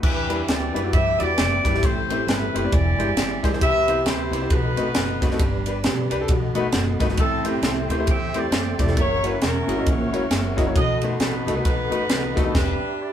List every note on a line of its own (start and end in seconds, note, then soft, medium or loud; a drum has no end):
0.03 0.41 E2 loud
0.03 0.70 E3 medium
0.03 0.89 D4 medium
0.03 0.46 G4 medium
0.03 1.80 B4 medium
0.03 0.45 B4 loud
0.03 2.69 E5 medium
0.03 2.69 G5 medium
0.03 1.80 D6 medium
0.03 kick loud
0.03 crash loud
0.29 0.39 G3 medium
0.29 0.39 B3 medium
0.29 0.39 D4 medium
0.29 0.40 E4 medium
0.29 0.40 B4 medium
0.29 ride bell medium
0.47 0.71 D2 medium
0.47 0.93 G4 medium
0.47 0.93 B4 medium
0.47 0.89 D5 loud
0.47 snare loud
0.47 ride bell medium
0.74 0.91 F#2 medium
0.74 0.79 G3 medium
0.74 0.79 B3 medium
0.74 0.79 D4 medium
0.74 0.79 E4 medium
0.74 0.80 B4 medium
0.74 ride bell medium
0.83 0.93 G3 medium
0.83 0.93 B3 medium
0.83 0.94 D4 medium
0.83 0.94 E4 medium
0.83 0.94 F#4 medium
0.93 1.16 G2 loud
0.93 1.19 G4 medium
0.93 1.18 B4 medium
0.93 1.20 E5 loud
0.93 kick loud
0.93 ride bell medium
1.19 1.40 E2 medium
1.19 1.29 G3 medium
1.19 1.29 B3 medium
1.19 1.29 D4 medium
1.19 1.29 E4 medium
1.19 1.29 F#4 medium
1.19 1.79 G4 medium
1.19 1.78 B4 medium
1.19 1.82 D5 loud
1.19 ride bell medium
1.38 1.60 F#1 loud
1.38 snare loud
1.38 ride bell medium
1.64 1.80 G1 medium
1.64 1.69 G3 medium
1.64 1.69 B3 medium
1.64 1.69 D4 medium
1.64 1.70 E4 medium
1.64 1.70 B4 medium
1.64 kick medium
1.64 snare soft
1.64 ride bell medium
1.74 1.83 G3 medium
1.74 1.83 B3 medium
1.74 1.83 D4 medium
1.74 1.83 E4 medium
1.74 1.83 G4 medium
1.74 snare soft
1.83 2.21 A1 loud
1.83 2.50 A2 medium
1.83 2.25 E4 medium
1.83 2.26 G4 medium
1.83 2.71 A4 medium
1.83 2.28 C5 loud
1.83 kick loud
1.83 ride bell medium
2.10 2.19 A3 medium
2.10 2.19 C4 medium
2.10 2.19 E4 medium
2.10 2.19 G4 medium
2.10 2.20 C5 medium
2.10 ride bell medium
2.27 2.50 G1 loud
2.27 2.68 E4 medium
2.27 2.69 G4 medium
2.27 2.72 B4 medium
2.27 snare loud
2.27 ride bell medium
2.54 2.70 F#1 medium
2.54 2.59 A3 medium
2.54 2.59 C4 medium
2.54 2.59 E4 medium
2.54 2.59 G4 medium
2.54 2.59 C5 medium
2.54 ride bell medium
2.63 2.72 A3 medium
2.63 2.72 C4 medium
2.63 2.72 E4 medium
2.63 2.73 G4 medium
2.63 2.73 D5 medium
2.70 2.94 E1 loud
2.70 3.39 E3 medium
2.70 3.59 G#3 medium
2.70 3.57 G4 medium
2.70 3.57 G#4 medium
2.70 3.60 D5 medium
2.70 3.43 D5 loud
2.70 4.48 E5 medium
2.70 kick loud
2.70 ride bell medium
2.98 3.14 G1 medium
2.98 3.08 G#3 medium
2.98 3.08 D4 medium
2.98 3.08 E4 medium
2.98 3.08 G4 medium
2.98 3.08 C5 medium
2.98 ride bell medium
3.16 3.39 G#1 medium
3.16 snare loud
3.16 ride bell medium
3.43 3.59 A#1 medium
3.43 3.48 G#3 medium
3.43 3.48 D4 medium
3.43 3.48 E4 medium
3.43 3.48 G4 medium
3.43 3.48 C5 loud
3.43 kick medium
3.43 snare soft
3.43 ride bell medium
3.52 3.61 G#3 medium
3.52 3.61 D4 medium
3.52 3.61 E4 medium
3.52 3.62 G4 medium
3.52 3.62 C5 medium
3.52 snare soft
3.60 3.99 C2 loud
3.60 4.28 C3 medium
3.60 4.49 G4 medium
3.60 4.05 G4 medium
3.60 4.47 B4 loud
3.60 4.03 E5 loud
3.60 7.14 B5 medium
3.60 kick loud
3.60 ride bell medium
3.88 3.97 B3 medium
3.88 3.97 C4 medium
3.88 3.98 E4 medium
3.88 3.98 G4 medium
3.88 3.98 C5 medium
3.88 ride bell medium
4.05 4.28 D2 loud
4.05 4.47 E4 medium
4.05 4.47 G4 medium
4.05 4.50 C5 loud
4.05 snare loud
4.05 ride bell medium
4.31 4.47 C2 loud
4.31 4.36 B3 medium
4.31 4.37 C4 medium
4.31 4.37 E4 medium
4.31 4.37 G4 medium
4.31 4.37 C5 medium
4.31 ride bell medium
4.41 4.50 B3 medium
4.41 4.50 C4 medium
4.41 4.50 E4 medium
4.41 4.51 G4 medium
4.41 4.51 C5 medium
4.48 4.73 B1 loud
4.48 5.17 B2 medium
4.48 5.36 D#4 medium
4.48 5.38 A4 medium
4.48 5.21 B4 loud
4.48 5.38 D#5 medium
4.48 kick loud
4.48 ride bell medium
4.52 5.36 F#4 medium
4.76 4.92 A1 medium
4.76 4.86 A3 medium
4.76 4.86 C4 medium
4.76 4.86 D#4 medium
4.76 4.87 F#4 medium
4.76 4.87 B4 medium
4.76 ride bell medium
4.95 5.33 F#1 medium
4.95 snare loud
4.95 ride bell medium
5.21 5.26 A3 medium
5.21 5.26 C4 medium
5.21 6.25 D4 medium
5.21 5.26 D#4 medium
5.21 5.26 F#4 medium
5.21 6.25 G4 medium
5.21 5.27 B4 medium
5.21 6.25 B4 medium
5.21 kick loud
5.21 snare soft
5.21 ride bell medium
5.31 5.40 A3 medium
5.31 5.40 C4 medium
5.31 5.40 D#4 medium
5.31 5.40 F#4 medium
5.31 5.40 A4 medium
5.31 snare soft
5.38 5.86 G1 loud
5.38 6.07 G2 medium
5.38 6.27 G4 medium
5.38 6.27 B4 medium
5.38 6.27 D5 medium
5.38 kick loud
5.38 ride bell medium
5.66 5.76 D4 medium
5.66 5.76 G4 medium
5.66 5.76 B4 medium
5.66 ride bell medium
5.84 6.07 B1 loud
5.84 snare loud
5.84 ride bell medium
6.10 6.26 C2 medium
6.10 6.15 D4 medium
6.10 6.16 G4 medium
6.10 6.16 B4 loud
6.10 ride bell medium
6.20 6.29 D4 medium
6.20 6.29 G4 medium
6.20 6.30 A4 medium
6.28 6.51 B1 loud
6.28 6.96 B2 medium
6.28 8.94 A4 medium
6.28 7.18 D#5 medium
6.28 7.18 F#5 medium
6.28 kick loud
6.28 ride bell medium
6.55 6.71 A1 medium
6.55 6.65 A3 medium
6.55 6.65 B3 medium
6.55 6.65 D#4 medium
6.55 6.65 F#4 medium
6.55 6.65 B4 medium
6.55 ride bell medium
6.72 6.96 F#1 loud
6.72 snare loud
6.72 ride bell medium
6.99 7.15 G1 medium
6.99 7.04 A3 medium
6.99 7.05 B3 medium
6.99 7.05 D#4 medium
6.99 7.05 F#4 medium
6.99 7.05 B4 loud
6.99 kick medium
6.99 snare soft
6.99 ride bell medium
7.09 7.18 A3 medium
7.09 7.18 B3 medium
7.09 7.18 D#4 medium
7.09 7.19 F#4 medium
7.09 7.19 B4 medium
7.09 snare soft
7.17 7.56 A1 loud
7.17 7.85 A2 medium
7.17 8.04 C4 medium
7.17 7.63 E4 medium
7.17 7.44 A4 loud
7.17 10.72 E5 medium
7.17 8.95 G5 medium
7.17 8.95 C6 medium
7.17 kick loud
7.17 ride bell medium
7.44 7.54 A3 medium
7.44 7.54 C4 medium
7.44 7.54 E4 medium
7.44 7.55 G4 medium
7.44 7.63 B4 loud
7.44 7.55 C5 medium
7.44 ride bell medium
7.62 7.85 C2 loud
7.62 8.49 E4 medium
7.62 8.08 G4 medium
7.62 8.08 C5 loud
7.62 snare loud
7.62 ride bell medium
7.89 8.08 D2 loud
7.89 7.94 A3 medium
7.89 7.94 C4 medium
7.89 7.95 E4 medium
7.89 7.95 G4 medium
7.89 7.95 C5 medium
7.89 ride bell medium
7.98 8.08 A3 medium
7.98 8.08 C4 medium
7.98 8.08 E4 medium
7.98 8.08 G4 medium
7.98 8.09 C5 medium
8.07 8.45 E2 medium
8.07 8.33 G4 medium
8.07 8.94 C5 medium
8.07 8.35 E5 loud
8.07 kick loud
8.07 ride bell medium
8.34 8.44 A3 medium
8.34 8.44 C4 medium
8.34 8.44 E4 medium
8.34 8.93 G4 medium
8.34 8.44 G4 medium
8.34 8.44 C5 medium
8.34 8.80 D5 loud
8.34 ride bell medium
8.51 8.74 F#1 medium
8.51 snare loud
8.51 ride bell medium
8.78 8.97 E1 loud
8.78 8.83 A3 medium
8.78 8.83 C4 medium
8.78 8.84 E4 medium
8.78 8.84 G4 medium
8.78 8.84 D5 medium
8.78 8.97 D5 loud
8.78 kick loud
8.78 snare soft
8.78 ride bell medium
8.87 8.97 A3 medium
8.87 8.97 C4 medium
8.87 8.97 E4 medium
8.87 8.97 G4 medium
8.87 8.97 A4 medium
8.87 snare soft
8.96 9.35 F#1 loud
8.96 9.42 E4 medium
8.96 10.74 A#4 medium
8.96 9.44 A#4 medium
8.96 9.25 C#5 loud
8.96 10.73 F#5 medium
8.96 10.73 C#6 medium
8.96 kick loud
8.96 ride bell medium
9.23 9.33 A#3 medium
9.23 9.33 C#4 medium
9.23 9.33 E4 medium
9.23 9.33 F#4 medium
9.23 9.43 B4 medium
9.23 9.33 C#5 medium
9.23 ride bell medium
9.42 9.64 E1 medium
9.42 10.28 C#4 medium
9.42 9.87 E4 medium
9.42 9.87 A#4 medium
9.42 snare loud
9.42 ride bell medium
9.67 9.83 G#1 medium
9.67 9.72 A#3 medium
9.67 9.72 C#4 medium
9.67 9.73 E4 medium
9.67 9.73 F#4 medium
9.67 9.73 G#4 medium
9.67 ride bell medium
9.76 9.86 A#3 medium
9.76 9.86 C#4 medium
9.76 9.87 E4 medium
9.76 9.87 F#4 medium
9.76 9.87 D#5 medium
9.86 10.12 A#1 loud
9.86 10.73 E4 medium
9.86 10.73 A#4 medium
9.86 10.59 C#5 loud
9.86 kick loud
9.86 ride bell medium
10.12 10.28 G#1 medium
10.12 10.22 A#3 medium
10.12 10.22 C#4 medium
10.12 10.22 E4 medium
10.12 10.22 F#4 medium
10.12 10.23 C#5 medium
10.12 ride bell medium
10.30 10.69 F#1 loud
10.30 snare loud
10.30 ride bell medium
10.56 10.62 A#3 medium
10.56 10.62 C#4 medium
10.56 10.62 E4 medium
10.56 10.62 F#4 medium
10.56 10.62 D#5 loud
10.56 kick medium
10.56 snare soft
10.56 ride bell medium
10.66 10.75 A#3 medium
10.66 10.75 C#4 medium
10.66 10.75 E4 medium
10.66 10.76 F#4 medium
10.66 10.76 C#5 medium
10.75 11.13 B1 loud
10.75 11.43 B2 medium
10.75 11.20 F#4 medium
10.75 12.53 A4 medium
10.75 11.62 A4 medium
10.75 12.53 D#5 medium
10.75 11.01 D#5 loud
10.75 12.53 F#5 medium
10.75 13.13 B5 medium
10.75 kick loud
10.75 ride bell medium
11.02 11.12 A3 medium
11.02 11.12 B3 medium
11.02 11.12 D#4 medium
11.02 11.13 F#4 medium
11.02 11.12 B4 medium
11.02 11.21 C5 medium
11.02 ride bell medium
11.20 11.43 A1 loud
11.20 11.66 D#4 medium
11.20 11.66 F#4 medium
11.20 11.65 B4 medium
11.20 snare loud
11.20 ride bell medium
11.46 11.62 C2 loud
11.46 11.51 A3 medium
11.46 11.52 B3 medium
11.46 11.52 D#4 medium
11.46 11.52 F#4 medium
11.46 11.52 A4 medium
11.46 ride bell medium
11.55 11.65 A3 medium
11.55 11.65 B3 medium
11.55 11.66 D#4 medium
11.55 11.66 F#4 medium
11.55 11.66 B4 medium
11.65 11.88 B1 medium
11.65 12.52 D#4 medium
11.65 12.52 F#4 medium
11.65 12.51 B4 loud
11.65 kick loud
11.65 ride bell medium
11.90 12.07 A1 loud
11.90 12.00 A3 medium
11.90 12.01 B3 medium
11.90 12.01 D#4 medium
11.90 12.01 F#4 medium
11.90 12.01 B4 medium
11.90 ride bell medium
12.09 12.32 C2 medium
12.09 snare loud
12.09 ride bell medium
12.36 12.52 D#2 loud
12.36 12.41 A3 medium
12.36 12.41 B3 medium
12.36 12.41 D#4 medium
12.36 12.41 F#4 medium
12.36 12.41 A4 loud
12.36 kick loud
12.36 snare soft
12.36 ride bell medium
12.44 12.54 A3 medium
12.44 12.54 B3 medium
12.44 12.54 D#4 medium
12.44 12.54 F#4 medium
12.44 12.54 A4 medium
12.54 12.73 E1 loud
12.54 13.13 D4 medium
12.54 13.13 G4 medium
12.54 12.97 B4 loud
12.54 13.13 D5 medium
12.54 13.13 E5 medium
12.54 kick loud
12.54 snare loud
12.54 crash medium
13.00 13.13 D5 loud